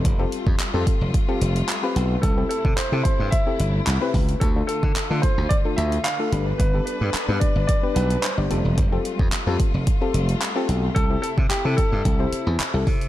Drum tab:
HH |x-x-x-x-x-xxx-x-|x-x-x-x-x-x-x-ox|x-x-x-x-x-xxx-x-|x-x-x-x-x-xxx-x-|
CP |----x-------x---|----x-------x---|----x-------x---|----x-------x---|
BD |o--o--o-o-------|o--o--o-o-----o-|o--o--o-o-------|o-----o-o-------|

HH |x-x-x-x-x-xxx-x-|x-x-x-x-x-x-x-ox|
CP |----x-------x---|----x-------x---|
BD |o--o--o-o-------|o--o--o-o-----o-|